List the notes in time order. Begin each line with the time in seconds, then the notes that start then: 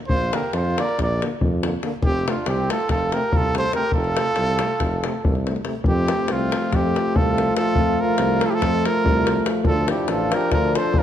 0.08 A#1 F4 C5, davul low
0.33 D3 A#3 G4 A#4, davul high
0.53 F2 F4 C5, davul high
0.76 D3 A#3 D5, davul high
0.82 A#4
0.89 davul high
0.98 A#1 A#4, davul high, davul low
1.03 D5
1.21 D3 A#3, davul high
1.41 F2, davul low
1.63 D3 A#3, davul high
1.83 D3 A#3, davul high
2.02 F1 G4, davul low
2.07 C4
2.26 C3 A3 D4, davul high
2.30 F4
2.46 C2 C4 G4, davul high
2.69 C3 A3 F4 A4, davul high
2.80 davul high
2.89 F1 F4 A4, davul high, davul low
3.12 C3 A3 G4 A#4, davul high
3.32 C2 F4, davul low
3.37 A4
3.54 C3 A3 A4, davul high
3.58 C5
3.73 C3 A3 G4 A#4, davul high
3.92 F1 F4 A4, davul low
4.04 davul high
4.17 C3 A3, davul high
4.26 davul high
4.36 C2, davul high
4.59 C3 A3, davul high
4.80 F1, davul high, davul low
5.04 C3 A3, davul high
5.25 C2, davul low
5.35 davul high
5.46 C3 A3, davul high
5.56 davul high
5.65 C3 A3, davul high
5.84 F2 F3 A3, davul low
5.89 C4 G4
6.08 davul high
6.28 C2 F4, davul high
6.33 C4
6.52 davul high
6.62 davul high
6.72 F2 C4 G4, davul high, davul low
6.96 davul high
7.16 C2 F4 A4, davul low
7.38 davul high
7.57 F4 A4, davul high
7.75 F2, davul low
8.01 F4 A#4
8.18 C2, davul high
8.41 F4 A4, davul high
8.48 E4 G4
8.52 F4 A4, davul high
8.61 F2, davul high, davul low
8.85 F4 A#4, davul high
9.04 C2, davul low
9.27 davul high
9.46 davul high
9.64 D2 F3 D4 F4 A4, davul low
9.88 E4 G4, davul high
10.08 A1 F4 A4, davul high
10.32 A#4, davul high
10.36 G4
10.41 davul high
10.52 D2 F4 A#4, davul high, davul low
10.75 A4 C5, davul high
10.94 A1 F4, davul low
10.99 A#4